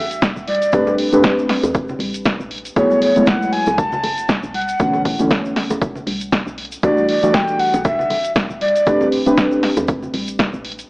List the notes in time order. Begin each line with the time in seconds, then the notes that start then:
Already playing: E1 E3 G3 A3 D4 F#4 E5
0.11 closed hi-hat, shaker
0.22 kick, snare, closed hi-hat, shaker
0.36 E1, shaker
0.47 D5, open hi-hat, high conga
0.55 closed hi-hat
0.62 closed hi-hat, shaker
0.72 A1 A3 C4 D4 G4 B4, kick, closed hi-hat, shaker
0.87 high bongo, high conga, shaker
0.98 open hi-hat
1.12 A1 A3 C4 D4 G4 B4, closed hi-hat, shaker
1.23 kick, snare, closed hi-hat, shaker
1.39 shaker
1.49 snare, open hi-hat, high bongo
1.64 E2, closed hi-hat, high bongo, shaker
1.74 kick, closed hi-hat, shaker
1.88 low conga, shaker
1.99 A1, open hi-hat, high conga
2.14 closed hi-hat, shaker
2.25 kick, snare, closed hi-hat, shaker
2.40 A1, shaker
2.51 open hi-hat
2.58 closed hi-hat
2.65 closed hi-hat, shaker
2.76 F#1 F#3 A3 B3 E4 G#4 C#5, kick, closed hi-hat, shaker
2.90 high conga, shaker
3.02 C#5, open hi-hat
3.16 F#1 F#3 G#3 A3 B3 E4, closed hi-hat, shaker
3.26 F#5, kick, snare, closed hi-hat, shaker
3.42 shaker
3.53 G#5, open hi-hat
3.66 C#2, closed hi-hat, high bongo, shaker
3.78 A5, kick, closed hi-hat, shaker
3.92 low conga, shaker
4.03 F#1, open hi-hat, high bongo
4.18 closed hi-hat, shaker
4.29 kick, snare, closed hi-hat, shaker
4.43 B1, shaker
4.54 F#5, open hi-hat, high conga
4.62 closed hi-hat
4.68 closed hi-hat, shaker
4.80 B1 B2 D3 E3 A3 C#4, kick, closed hi-hat, shaker
4.93 high bongo, high conga, shaker
5.05 kick, open hi-hat
5.19 B1 B2 D3 E3 A3 C#4, closed hi-hat, shaker
5.30 kick, snare, closed hi-hat, shaker
5.45 shaker
5.56 snare, open hi-hat, high bongo
5.70 F#1, closed hi-hat, high bongo, shaker
5.82 kick, closed hi-hat, shaker
5.95 low conga, shaker
6.07 B1, open hi-hat, high conga
6.20 closed hi-hat, shaker
6.32 kick, snare, closed hi-hat, shaker
6.47 B1, shaker
6.58 open hi-hat
6.65 closed hi-hat
6.72 closed hi-hat, shaker
6.83 E1 E3 G3 A3 D4 F#4 D5, kick, closed hi-hat, shaker
6.97 high conga, shaker
7.09 D5, open hi-hat
7.23 E1 E3 G3 A3 D4 F#4, closed hi-hat, shaker
7.34 G5, kick, snare, closed hi-hat, shaker
7.48 shaker
7.59 F#5, open hi-hat
7.74 B1, closed hi-hat, high bongo, shaker
7.85 E5, kick, closed hi-hat, shaker
7.99 low conga, shaker
8.10 E1, open hi-hat, high bongo
8.24 closed hi-hat, shaker
8.36 kick, snare, closed hi-hat, shaker
8.50 E1, shaker
8.61 D5, open hi-hat, high conga
8.68 closed hi-hat
8.75 closed hi-hat, shaker
8.86 A1 A3 C4 D4 G4 B4, kick, closed hi-hat, shaker
9.01 high bongo, high conga, shaker
9.12 open hi-hat
9.26 A1 A3 C4 D4 G4 B4, closed hi-hat, shaker
9.37 kick, snare, closed hi-hat, shaker
9.51 shaker
9.63 snare, open hi-hat, high bongo
9.76 E2, closed hi-hat, high bongo, shaker
9.88 kick, closed hi-hat, shaker
10.03 low conga, shaker
10.14 A1, open hi-hat, high conga
10.28 closed hi-hat, shaker
10.39 kick, snare, closed hi-hat, shaker
10.53 A1, shaker
10.65 open hi-hat
10.72 closed hi-hat
10.79 closed hi-hat, shaker